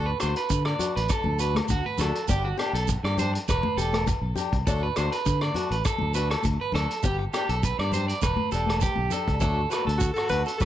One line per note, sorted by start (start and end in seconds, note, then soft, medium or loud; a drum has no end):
0.00 0.13 D2 medium
0.06 0.19 B4 medium
0.20 0.33 D2 medium
0.20 0.38 F#4 medium
0.20 0.35 C5 medium
0.20 cross-stick medium
0.20 closed hi-hat soft
0.20 low agogo medium
0.20 shekere medium
0.36 0.65 B4 medium
0.36 closed hi-hat medium
0.49 0.73 D3 medium
0.49 kick medium
0.49 closed hi-hat soft
0.49 shekere loud
0.65 0.94 D5 medium
0.65 cross-stick medium
0.65 low agogo medium
0.79 0.99 D4 soft
0.79 0.98 F#4 medium
0.79 closed hi-hat medium
0.79 low conga medium
0.79 shekere medium
0.96 1.07 A1 medium
0.96 1.09 B4 medium
0.96 closed hi-hat medium
1.09 1.38 A4 medium
1.09 kick medium
1.09 cross-stick medium
1.09 closed hi-hat soft
1.09 low agogo medium
1.09 shekere medium
1.24 1.59 D2 medium
1.24 high conga medium
1.24 low conga medium
1.39 1.59 D4 soft
1.39 1.57 F#4 medium
1.39 1.54 B4 medium
1.39 closed hi-hat soft
1.39 shekere medium
1.55 cross-stick medium
1.55 closed hi-hat soft
1.55 high conga medium
1.55 low agogo medium
1.69 1.81 D2 loud
1.69 1.85 F#4 medium
1.69 kick medium
1.69 closed hi-hat medium
1.69 high conga medium
1.69 shekere medium
1.86 1.99 B4 medium
1.98 2.10 D2 medium
1.98 2.18 D4 medium
1.98 2.17 F#4 medium
1.98 2.27 A4 medium
1.98 cross-stick medium
1.98 closed hi-hat medium
1.98 low conga medium
1.98 low agogo medium
1.98 shekere medium
2.15 closed hi-hat soft
2.28 2.52 G1 medium
2.28 2.47 B3 medium
2.28 2.47 D4 medium
2.28 2.43 G4 medium
2.28 2.48 G4 medium
2.28 kick medium
2.28 closed hi-hat soft
2.28 shekere medium
2.45 2.58 F#4 medium
2.57 2.78 D4 medium
2.57 2.76 G4 medium
2.57 2.73 G4 medium
2.57 cross-stick medium
2.57 closed hi-hat soft
2.57 low agogo medium
2.73 2.96 B1 medium
2.73 2.88 A4 medium
2.73 closed hi-hat soft
2.88 kick medium
2.88 closed hi-hat soft
2.88 shekere loud
3.04 3.37 G2 medium
3.04 3.17 D5 medium
3.04 cross-stick medium
3.04 low agogo medium
3.17 3.38 D4 soft
3.17 3.36 G4 medium
3.17 3.33 C5 medium
3.17 closed hi-hat medium
3.17 low conga medium
3.17 shekere medium
3.34 muted clean electric guitar stroke medium
3.34 closed hi-hat medium
3.48 3.60 E1 medium
3.48 3.77 B4 medium
3.48 kick medium
3.48 cross-stick medium
3.48 closed hi-hat soft
3.48 low agogo medium
3.48 shekere medium
3.63 high conga medium
3.63 low conga medium
3.77 4.11 E1 medium
3.77 3.97 D4 soft
3.77 3.96 G4 medium
3.77 4.05 A4 medium
3.77 closed hi-hat soft
3.77 shekere medium
3.93 cross-stick medium
3.93 closed hi-hat soft
3.93 high conga medium
3.93 low agogo medium
4.07 muted clean electric guitar stroke medium
4.07 kick medium
4.07 closed hi-hat medium
4.07 high conga medium
4.07 shekere medium
4.21 4.33 B1 medium
4.36 4.56 D4 medium
4.36 4.54 G4 medium
4.36 closed hi-hat soft
4.36 low conga medium
4.36 low agogo medium
4.36 shekere medium
4.53 4.63 C2 medium
4.53 kick medium
4.53 closed hi-hat soft
4.67 4.89 D2 medium
4.67 4.85 F#3 medium
4.67 4.85 A3 medium
4.67 4.85 D4 medium
4.67 4.86 F#4 medium
4.67 4.81 A4 medium
4.67 kick medium
4.67 closed hi-hat soft
4.67 shekere medium
4.83 4.96 B4 medium
4.96 5.09 D2 medium
4.96 5.16 A3 medium
4.96 5.15 D4 medium
4.96 5.15 F#4 medium
4.96 5.11 C5 medium
4.96 cross-stick medium
4.96 closed hi-hat soft
4.96 low agogo medium
4.96 shekere medium
5.12 5.40 B4 medium
5.12 closed hi-hat soft
5.26 5.49 D3 medium
5.26 kick medium
5.26 closed hi-hat soft
5.26 shekere medium
5.41 5.70 D5 medium
5.41 cross-stick medium
5.41 low agogo medium
5.54 5.75 A3 medium
5.54 5.74 D4 medium
5.54 5.74 F#4 medium
5.54 closed hi-hat medium
5.54 low conga medium
5.71 5.81 A1 medium
5.71 5.85 B4 medium
5.71 closed hi-hat soft
5.85 6.14 A4 medium
5.85 kick medium
5.85 cross-stick medium
5.85 closed hi-hat soft
5.85 low agogo medium
5.85 shekere loud
5.99 6.34 D2 medium
5.99 high conga medium
5.99 low conga medium
6.14 6.34 A3 soft
6.14 6.34 D4 soft
6.14 6.33 F#4 medium
6.14 6.30 B4 medium
6.14 closed hi-hat medium
6.14 shekere medium
6.30 6.44 A4 medium
6.30 cross-stick medium
6.30 closed hi-hat medium
6.30 low agogo medium
6.43 6.57 D2 loud
6.43 kick medium
6.43 closed hi-hat medium
6.43 high conga medium
6.43 shekere medium
6.61 6.74 B4 medium
6.72 6.86 D2 medium
6.72 6.93 A3 medium
6.72 6.93 D4 medium
6.72 7.03 A4 medium
6.72 muted steel-string acoustic guitar stroke medium
6.72 cross-stick medium
6.72 closed hi-hat medium
6.72 low conga medium
6.72 low agogo medium
6.91 closed hi-hat soft
7.03 7.27 G1 medium
7.03 7.22 B3 medium
7.03 7.19 G4 medium
7.03 7.23 G4 medium
7.03 muted steel-string acoustic guitar stroke medium
7.03 kick medium
7.03 closed hi-hat medium
7.03 shekere medium
7.19 muted clean electric guitar stroke medium
7.33 7.54 D4 soft
7.33 7.48 G4 medium
7.33 7.52 G4 medium
7.33 cross-stick medium
7.33 closed hi-hat soft
7.33 low agogo medium
7.33 shekere medium
7.49 7.72 B1 medium
7.49 7.63 A4 medium
7.49 closed hi-hat medium
7.63 7.79 B4 medium
7.63 kick medium
7.63 closed hi-hat medium
7.63 shekere medium
7.79 8.12 G2 medium
7.79 7.93 D5 medium
7.79 cross-stick medium
7.79 low agogo medium
7.92 8.12 G4 medium
7.92 8.08 C5 medium
7.92 closed hi-hat soft
7.92 low conga medium
7.92 shekere medium
7.97 8.13 D4 soft
8.08 8.22 D5 medium
8.08 closed hi-hat medium
8.22 8.35 E1 medium
8.22 8.51 B4 medium
8.22 kick medium
8.22 cross-stick medium
8.22 closed hi-hat soft
8.22 low agogo medium
8.22 shekere loud
8.37 high conga medium
8.37 low conga medium
8.52 8.86 E1 medium
8.52 8.72 D4 soft
8.52 8.71 G4 medium
8.52 8.81 A4 medium
8.52 closed hi-hat soft
8.52 shekere medium
8.66 cross-stick medium
8.66 closed hi-hat medium
8.66 high conga medium
8.66 low agogo medium
8.81 9.11 G4 medium
8.81 kick medium
8.81 shekere medium
8.85 closed hi-hat soft
8.96 9.08 B1 medium
8.96 high conga medium
9.10 9.31 D4 soft
9.10 9.30 G4 medium
9.10 9.40 A4 medium
9.10 closed hi-hat soft
9.10 low conga medium
9.10 low agogo medium
9.10 shekere medium
9.28 9.39 C#2 medium
9.28 kick medium
9.28 closed hi-hat soft
9.40 9.65 D2 medium
9.40 9.59 F#3 medium
9.40 9.60 A3 medium
9.40 9.60 D4 medium
9.40 9.61 F#4 medium
9.40 9.70 A4 medium
9.40 kick medium
9.40 closed hi-hat soft
9.40 shekere medium
9.70 9.91 A3 medium
9.70 9.90 D4 soft
9.70 9.89 F#4 medium
9.70 9.86 B4 medium
9.70 cross-stick medium
9.70 closed hi-hat soft
9.70 low agogo medium
9.70 shekere medium
9.85 10.10 D2 medium
9.85 10.15 A4 medium
9.85 closed hi-hat soft
9.85 high conga medium
9.98 10.13 F#4 medium
9.98 kick medium
9.98 closed hi-hat soft
9.98 shekere medium
10.14 10.45 F#4 medium
10.14 10.29 A4 medium
10.14 low agogo medium
10.14 shekere soft
10.18 cross-stick medium
10.29 10.43 D2 medium
10.29 10.50 D4 soft
10.29 10.49 F#4 soft
10.29 10.44 B4 medium
10.29 closed hi-hat soft
10.29 low conga medium
10.29 shekere medium
10.33 10.51 A3 soft
10.45 10.60 A4 medium
10.45 closed hi-hat soft
10.45 shekere soft
10.58 10.65 F#2 medium
10.58 10.65 A4 medium
10.58 10.65 B4 medium
10.58 kick medium
10.58 cross-stick medium
10.58 closed hi-hat soft
10.58 shekere medium